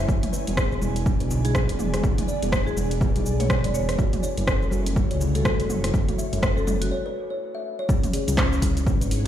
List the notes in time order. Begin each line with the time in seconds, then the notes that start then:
Already playing: E4 G#5
0.09 E1 B3 D4 E4 D5, kick, shaker
0.23 closed hi-hat, mid tom, shaker
0.33 B4, shaker
0.47 E1, closed hi-hat, high conga, shaker
0.57 G#4, kick, cross-stick, shaker
0.72 shaker
0.82 E1 E4, high conga, shaker
0.96 closed hi-hat, shaker
1.06 D4, kick, high conga, shaker
1.20 B1 B4, closed hi-hat, shaker
1.31 low conga, shaker
1.45 E4 G#4, closed hi-hat, high conga, shaker
1.55 G#4, kick, cross-stick, high conga, shaker
1.69 E1 G#4, closed hi-hat, shaker
1.79 mid tom, shaker
1.93 G#4, cross-stick, closed hi-hat, high conga, low conga, shaker
2.03 E1 E4, kick, low conga, shaker
2.18 closed hi-hat, mid tom, shaker
2.28 D5, shaker
2.42 E1, closed hi-hat, high conga, shaker
2.52 G#4, kick, cross-stick, shaker
2.67 G#4, shaker
2.77 E1 G#4, high conga, shaker
2.91 closed hi-hat, shaker
3.01 B4, kick, low conga, shaker
3.15 B1 G#4, closed hi-hat, high conga, shaker
3.26 shaker
3.40 B4 C#5, closed hi-hat, mid tom, high conga, shaker
3.50 kick, cross-stick, shaker
3.64 E1 D5, closed hi-hat, high conga, shaker
3.74 C#5, low conga, shaker
3.89 B4, cross-stick, closed hi-hat, shaker
3.99 F#1 A3 E4 F#4 C#5, kick, shaker
4.13 closed hi-hat, mid tom, shaker
4.23 C#5, shaker
4.37 F#1, closed hi-hat, high conga, shaker
4.47 A4, kick, cross-stick, shaker
4.62 shaker
4.71 F#1 F#4, high conga, shaker
4.86 closed hi-hat, shaker
4.96 E4, kick, high conga, shaker
5.11 C#2 C#5, closed hi-hat, shaker
5.21 low conga, shaker
5.35 F#4 A4, closed hi-hat, high conga, shaker
5.45 A4, kick, cross-stick, high conga, shaker
5.59 F#1 A4, closed hi-hat, shaker
5.70 mid tom, shaker
5.84 A4, cross-stick, closed hi-hat, high conga, low conga, shaker
5.94 F#1 F#4, kick, low conga, shaker
6.09 closed hi-hat, mid tom, shaker
6.18 E5, shaker
6.32 F#1, closed hi-hat, high conga, shaker
6.43 A4, kick, cross-stick, shaker
6.57 A4, shaker
6.67 F#1 A4, mid tom, high conga, shaker
6.81 F#4, closed hi-hat, shaker
6.91 C#5
7.06 B4
7.30 C#5
7.55 E5
7.79 C#5
7.89 C#2 B3 C#4 E4 G#4 C#5, kick, shaker
8.04 closed hi-hat, mid tom, shaker
8.13 G#4, open hi-hat, shaker
8.27 C#2, closed hi-hat, high conga, shaker
8.37 C#4, kick, cross-stick, clap, low conga, shaker
8.53 shaker
8.62 C#2 E4, kick, open hi-hat, high conga, low conga, shaker
8.77 closed hi-hat, shaker
8.87 B4, kick, high conga, low conga, shaker
9.01 G#1 B4, closed hi-hat, shaker
9.11 open hi-hat, shaker